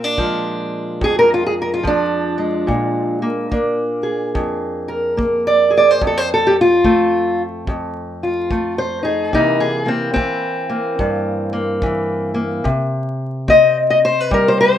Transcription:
Already playing: A#2 A#4
0.04 D4
0.18 F3 G#3, kick
1.01 F2 G#4, kick
1.19 A#4
1.34 F4
1.46 G#4
1.62 A#4
1.74 F4
1.83 F3 D4, kick
2.38 G#3
2.67 A#2, kick
3.22 A#3
3.51 A#3 D4, kick
4.03 G#4
4.35 F2, kick
4.88 A#4
5.17 A#3, kick
5.47 D5
5.70 G#4
5.77 D5
5.91 C5
6.01 F2, kick
6.07 A4
6.18 C5
6.34 A4
6.47 G4
6.61 F4
6.84 A3 C4, kick
7.67 F2, kick
8.23 F4
8.51 A3, kick
8.78 C5
9.03 D#4 G#4
9.33 C3 E3 A#3 D#4, kick
9.60 G#4
9.86 A#3 C4
10.14 E3 C4, kick
10.70 A#3
10.99 G2, kick
11.53 A#3
11.82 E3, kick
12.34 A#3
12.64 C3, kick
13.48 C4 D#5, kick
13.90 D#5
14.05 C5
14.20 B4
14.31 G3 A#4, kick
14.48 C5
14.61 C5

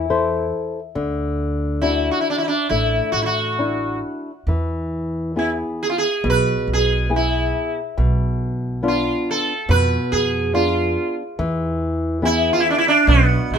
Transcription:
Already playing: E2 E4
0.10 E4 A4 C5
0.95 D2 D3
1.82 D4 E4 F#4
2.11 F#4
2.21 E4
2.30 D4
2.38 E4
2.43 E4
2.48 D4
2.69 A1 A3 E4
3.12 A1 F#4
3.22 E4 F#4
3.59 D4 E4 F#4
4.47 E2 E3
5.36 B3 E4 G#4
5.83 G#4
5.90 F4
5.98 G#4
6.24 B1 B2
6.30 B4
6.68 B1
6.73 G#4
7.09 B3 E4 G#4
7.16 E4
7.97 B1 B2
8.83 B3 D4 F4
8.88 F4
9.31 A4
9.69 F2 B2 B4
10.12 F2 G#4
10.53 B3 D4 F4
11.39 E2 E3
12.22 B3 E4 G#4
12.53 F4
12.60 E4
12.70 D4
12.78 E4
12.88 D4
13.07 B1 B2 B3
13.50 B1 G#3

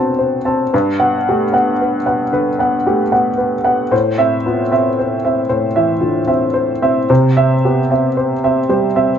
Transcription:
Already playing: A3 B3 C4 F#4 C5 A5
0.19 C5
0.45 C4 A5
0.73 G2 B4
1.00 B3 F#5
1.29 A3 G4
1.53 B3 F#5
1.81 B4
2.06 B3 F#5
2.32 D3 B4
2.59 B3 F#5
2.86 A3 G4
3.12 B3 F#5
3.38 B4
3.64 B3 F#5
3.91 A2 C5
4.18 C4 E5
4.46 B3 F4
4.72 C4 E5
4.99 C5
5.25 C4 E5
5.49 A2 C5
5.76 E3 E5
6.00 D3 F4
6.27 C4 E5
6.54 C5
6.82 C4 E5
7.10 C3 C5
7.37 C4 E5
7.65 B3 G4
7.91 C4 E5
8.17 C5
8.44 C4 E5
8.69 G3 C5
8.96 C4 E5

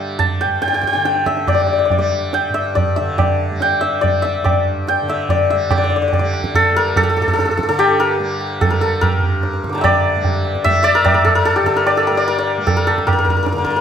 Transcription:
Already playing: G2 D3 G3 D5 E5 G5
0.19 A5, tabla tin, tabla ge
0.41 G2 G5, tabla na
0.62 G5, tabla te
0.68 G5
0.73 G5, tabla te
0.81 G5, tabla ke
0.87 G5
0.93 D3 G5, tabla te
1.05 G5, tabla te
1.16 tabla te
1.26 E5, tabla ke
1.37 tabla te
1.46 G3 D5, tabla na, tabla ge
1.55 D5
1.60 D5
1.67 D5
1.73 D5
1.79 D5
1.85 D5
1.90 D5, tabla tin, tabla ge
1.98 G3 D5
2.12 tabla na
2.33 G5, tabla te
2.49 G2
2.54 E5, tabla te
2.75 D5, tabla tin, tabla ge
2.96 E5, tabla te
3.01 D3
3.18 D5, tabla na, tabla ge
3.51 G3
3.60 G5, tabla te
3.81 E5, tabla te
4.01 G3 D5, tabla tin, tabla ge
4.22 E5, tabla te
4.44 D5, tabla na, tabla ge
4.51 G2
4.87 G5, tabla te
5.02 D3
5.08 E5, tabla te
5.29 D5, tabla tin, tabla ge
5.50 G3 E5, tabla te
5.70 D3 D5, tabla na, tabla ge
5.78 D5
5.84 D5
5.90 D5
5.96 D5
6.02 D5
6.08 D5
6.13 D5, tabla tin, tabla ge
6.19 G3 D5
6.34 tabla na
6.44 tabla ke
6.55 A4, tabla tin, tabla ge
6.71 G3
6.76 A#4
6.96 A4, tabla na, tabla ge
7.03 A4
7.10 A4
7.17 G2 A4, tabla te
7.22 A4
7.28 A4, tabla ge
7.33 A4
7.39 A4, tabla te
7.46 A4, tabla te
7.51 A4
7.57 A4, tabla ke
7.63 A4
7.69 D3 A4, tabla te
7.79 G4, tabla na
8.00 A#4, tabla na
8.19 G3, tabla tin
8.41 tabla na
8.61 A4, tabla tin, tabla ge
8.69 G3 A#4
8.81 A4
9.01 A#4, tabla na, tabla ge
9.17 G2
9.23 tabla ge
9.43 tabla te
9.54 tabla te
9.64 D3, tabla ke
9.69 A#5 D6
9.75 G5 A5, tabla te
9.81 D5 E5, tabla na, tabla ge
10.16 G3
10.24 tabla tin, tabla ge
10.45 tabla na
10.55 tabla ke
10.64 G3 E5, tabla tin, tabla ge
10.83 D5 E5
10.95 A#4
11.04 D5, tabla na, tabla ge
11.13 G2 A#4
11.25 A4, tabla ge
11.35 A#4
11.45 A4, tabla te
11.56 G4, tabla te
11.63 D3 A4, tabla ke
11.76 A#4, tabla te
11.87 D5, tabla na
11.97 A4
12.07 G3 A#4, tabla na
12.17 D5
12.27 A#4, tabla tin
12.39 D5
12.47 tabla na
12.58 G3
12.67 A4, tabla tin, tabla ge
12.77 A#4
12.87 A4, tabla na
12.98 tabla ke
13.05 G2 A#4, tabla na, tabla ge
13.13 A#4
13.19 A#4
13.25 A#4, tabla ge
13.30 A#4
13.37 A#4
13.43 A#4, tabla te
13.48 A#4
13.52 D3 A#4
13.57 A#4, tabla te
13.64 A#4, tabla ke
13.70 A#4
13.76 A#4, tabla te

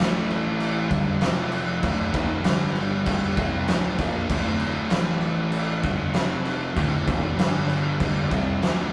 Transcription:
0.00 A1 A2 E3 A3, snare
0.30 crash
0.60 crash
0.91 G1 G2 D3 G3, kick, crash
1.21 F1 F2 C3 F3, snare, crash
1.52 crash
1.83 D1 D2 A2 D3, kick, crash
2.14 D#1 D#2 A#2 D#3, kick, crash
2.44 G1 G2 D3 G3, snare, crash
2.75 crash
3.06 G1 G2 D3 G3, kick, crash
3.37 C2 C3 G3 C4, kick, crash
3.68 D1 D2 A2 D3, snare, crash
3.98 A#1 A#2 F3 A#3, kick, crash
4.30 D1 D2 A2 D3, kick, crash
4.60 crash
4.90 A1 A2 E3 A3, snare, crash
5.21 crash
5.52 crash
5.83 G1 G2 D3 G3, kick, crash
6.14 F1 F2 C3 F3, snare, crash
6.45 crash
6.76 D1 D2 A2 D3, kick, crash
7.08 D#1 D#2 A#2 D#3, kick, crash
7.37 G1 G2 D3 G3, snare, crash
7.69 crash
8.00 G1 G2 D3 G3, kick, crash
8.31 C2 C3 G3 C4, kick, crash
8.62 D1 D2 A2 D3, snare, crash

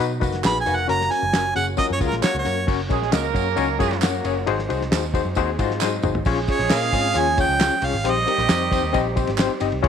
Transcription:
Already playing: B2 F#3 D#4 F#4
0.00 B2 D#4 F#4 B4
0.20 F#1 A#3 D#4 F#4 B4, kick, closed hi-hat, tambourine
0.32 snare, closed hi-hat
0.44 A#1 B3 D#4 F#4 G#4 B4 B5, snare, clap, closed hi-hat, tambourine
0.61 G#5
0.66 F1 A#3 D#4 F#4 B4, closed hi-hat, tambourine
0.75 F#5, closed hi-hat
0.88 F#1 F#3 A#3 C#4 F#4 A#4 A#5, closed hi-hat
1.01 snare
1.10 C#4 F#4 A#4 G#5, closed hi-hat, tambourine
1.23 F#1
1.33 C#4 F#4 A#4, snare, clap, closed hi-hat, tambourine
1.55 F#1 C#4 F#4 G#4 F#5, closed hi-hat, tambourine
1.77 F3 C#4 F#4 A#4 D#5, kick, closed hi-hat, tambourine
1.90 F#2 C#5
2.00 C#2 G#3 C#4 F4 F#4 A#4, kick, closed hi-hat, tambourine
2.08 A#4, closed hi-hat
2.13 A#1, snare
2.22 A#3 C#4 F#4 A#4 C#5, snare, clap, closed hi-hat, tambourine
2.35 C#2
2.39 C#5
2.45 F#2 C#4 F#4 A#4, closed hi-hat, tambourine
2.67 F#1 F#3 A#3 C#4 F#4 A#4 C#5, kick, crash, tambourine
2.89 A#1 G#3 C#4 F#4 G#4 A#4 C#5, kick, ride, tambourine
3.02 snare
3.12 C#2 A#3 C#4 F#4 A#4 D#5, snare, clap, ride, tambourine
3.34 F#2 C#4 F#4 A#4 C#5, kick, ride, tambourine
3.56 C#2 F#3 C#4 D#4 F#4 A#4 C#5, ride, tambourine
3.79 F#2 G#3 C#4 F4 F#4 G#4 A#4 C#5, kick, ride, tambourine
3.91 snare, ride
4.02 A#3 C#4 F#4 A#4 C#5, snare, clap, ride, tambourine
4.24 F#1 C#4 F#4 A#4 C#5, ride, tambourine
4.46 G#1 G#3 C4 D#4 F#4 G#4 C5, ride
4.59 snare
4.69 C2 D#4 F#4 G#4 C5, ride, tambourine
4.81 snare
4.91 D#2 D#4 F#4 G#4 C5, snare, clap, ride, tambourine
5.14 D#4 F#4 G#4 C5, kick, ride, tambourine
5.25 F#2
5.35 D#2 C4 D#4 F#4 G#4 C5, kick, ride, tambourine
5.59 G#2 G#3 D#4 F4 F#4 G#4 C5, kick, ride, tambourine
5.71 snare
5.81 F#3 D#4 F#4 G#4 C5, snare, clap, tambourine
6.02 G#1 D#4 F#4 G#4 C5, mid tom, tambourine
6.15 floor tom
6.25 A#1 F3 G#3 C#4 F4 G#4 C#5, kick, crash, tambourine
6.48 C#4 F4 G#4 C#5, kick, ride, tambourine
6.59 A#1, snare
6.70 A#2 C#4 F4 G#4 A#4 C#5 F5, snare, clap, ride, tambourine
6.93 G#2 C4 C#4 F4 G#4 C#5, kick, ride, tambourine
7.14 D#2 F3 C#4 F4 G#4 C#5, ride, tambourine
7.18 G#5
7.37 C#4 F4 G#4 C#5 G5, kick, ride, tambourine
7.49 C#2
7.59 C#4 F4 G#4 C#5, snare, clap, ride, tambourine
7.82 C2 C#4 F4 G#4 C#5 F5, open hi-hat, ride, tambourine
7.93 G#1, ride
8.04 A#1 D#3 G3 C4 D#4 G4 C5, hi-hat pedal, ride
8.10 D#5
8.26 C4 D#4 G4 A#4, ride
8.38 A#1, snare
8.49 F2 C4 D#4 G4 C5, snare, clap, ride, tambourine
8.71 C4 D#4 G4 C5, kick, ride, tambourine
8.83 D#2
8.93 A#1 C4 D#4 G4 D#5, kick, ride, tambourine
9.16 C4 D#4 G4 C5, kick, ride, tambourine
9.27 G#1, snare, ride
9.38 C4 D#4 G4 C5, snare, clap, ride, tambourine
9.60 G1 C4 D#4 G4 D#5, ride, tambourine
9.72 C2, ride
9.82 C#2 F3 G#3 C#4 F4 G#4 C#5, kick, ride

